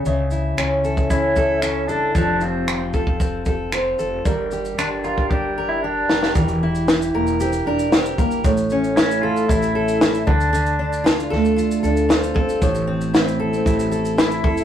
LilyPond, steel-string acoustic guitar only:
\new Staff \with { instrumentName = "Steel-string acoustic guitar" } { \time 4/4 \key a \phrygian \tempo 4 = 115 cis8 e'8 cis'8 a'8 cis'8 a'8 e'8 a'8 | f8 f'8 c'8 a'8 c'8 a'8 f'8 a'8 | g8 g'8 d'8 bes'8 d'8 bes'8 g'8 bes'8 | e8 e'8 g'8 bes'8 g'8 bes'8 g'8 bes'8 |
a,8 cis'8 e'8 a'8 e'8 a'8 e'8 d8 | d8 d'8 f'8 a'8 f'8 a'8 f'8 a'8 | a,8 c'8 e'8 a'8 e'8 a'8 e'8 a'8 | }